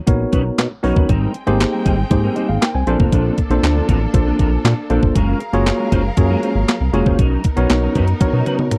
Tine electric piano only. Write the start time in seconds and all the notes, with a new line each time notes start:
0.07 B3 D#4 F#4 A#4 C#5
0.83 B3 D#4 F#4 A#4 C#5
1.47 A#3 D#4 G4 G#4 C5
2.10 A#3 D#4 G4 G#4 C5
2.36 G4 D#5
2.49 G#4 F5
2.61 A#4 G5
2.75 C5 G#5
2.87 A#3 D4 F4 A4 C5
3.50 A#3 D4 F4 A4 C5
4.13 A#3 D4 F4 A4 C5
4.90 A#3 D4 F4 A4 C5
5.53 A#3 F4 F#4 G#4 C#5
6.17 A#3 F4 F#4 G#4 C#5
6.93 A#3 F4 F#4 G#4 C#5
7.57 B3 D#4 F#4 A#4 C#5
8.20 B3 D4 F#4 A#4 C#5
8.27 D#4